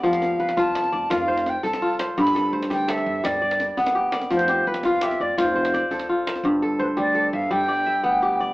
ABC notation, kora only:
X:1
M:12/8
L:1/8
Q:3/8=112
K:Gmix
V:1 name="Kora"
[Gd] z B3 d2 c3 F c- | c A c2 A3 d3 G d- | d G B2 G d2 c d2 F c- | c A c2 A e2 d e2 G d |]
V:2 name="Kora"
F,2 z F2 z F2 z A2 z | G,,2 z G,2 z G,2 z B,2 z | F,2 z F2 z F2 z A2 z | G,,2 z G,2 z G,2 z B,2 z |]